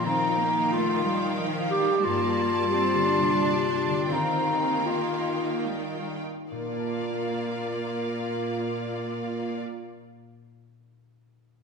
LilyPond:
<<
  \new Staff \with { instrumentName = "Violin section" } { \time 3/4 \key bes \major \tempo 4 = 76 <f'' g''>2. | <d'' a''>2. | <f'' g''>2~ <f'' g''>8 r8 | <d'' f''>2.~ |
<d'' f''>2. | }
  \new Staff \with { instrumentName = "Clarinet" } { \time 3/4 \key bes \major ees'4 f'4 r8 g'8 | f'2. | ees'4 f'4 r4 | bes'2.~ |
bes'2. | }
  \new Staff \with { instrumentName = "Harp" } { \time 3/4 \key bes \major \tuplet 3/2 { <ees f>8 f'4 f'8 ees'8 d'8 ees'8 f'8 ees'8 } | \tuplet 3/2 { g,8 g'8 bes8 g'8 d8 c8 d8 g'8 d8 } | \tuplet 3/2 { ees8 f'8 bes8 f'8 ees'8 d'8 ees'8 f'8 ees'8 } | <bes, bes d' f' f'' a''>2.~ |
<bes, bes d' f' f'' a''>2. | }
  \new Staff \with { instrumentName = "Cello section" } { \time 3/4 \key bes \major c'8 bes8 a8 g8 f8 g8 | bes4 c'8 d'4. | c'4 bes4 g8 r8 | bes,2.~ |
bes,2. | }
  \new Staff \with { instrumentName = "Viola section" } { \clef bass \time 3/4 \key bes \major ees2. | g2. | ees2~ ees8 r8 | <bes f'>2.~ |
<bes f'>2. | }
>>